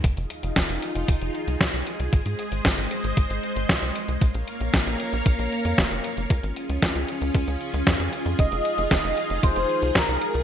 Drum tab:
HH |xxxxxxxxxxxxxxxx|xxxxxxxxxxxxxxxx|xxxxxxxxxxxxxxxx|xxxxxxxxxxxxxxxx|
SD |----o-------o---|----o-------o---|----o-------o---|----o-------o---|
BD |o---o---o---o---|o---o---o---o---|o---o---o---o---|o---o---o---o---|

HH |xxxxxxxxxxxxxxxx|
SD |----o-------o---|
BD |o---o---o---o---|